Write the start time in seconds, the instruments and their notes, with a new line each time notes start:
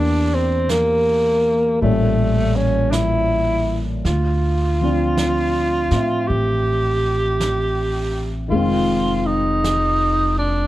Already playing: upright bass E2, grand piano E3 A#3 D4 G4, tenor saxophone D4
0.34 tenor saxophone C4
0.69 tenor saxophone A#3, brush sweep, snare, hi-hat pedal
1.81 upright bass A1, grand piano A#2 G3 C#4 A4, tenor saxophone A3, brush sweep
2.56 tenor saxophone C#4
2.91 tenor saxophone D4 E4, brush sweep, snare, hi-hat pedal
4.05 upright bass D2, tenor saxophone F4, brush sweep, snare
4.81 grand piano F3 C4 D4
4.86 grand piano F4
5.17 brush sweep, snare, hi-hat pedal
5.91 upright bass A2, grand piano C4, snare
5.96 grand piano E5
6.28 upright bass A1, tenor saxophone G4, brush sweep
7.40 brush sweep, snare, hi-hat pedal
8.48 upright bass F1, grand piano D#3 G#3, tenor saxophone F4
8.52 grand piano C4, brush sweep
8.59 grand piano F4
9.26 tenor saxophone D#4
9.64 brush sweep, snare, hi-hat pedal
10.38 tenor saxophone D4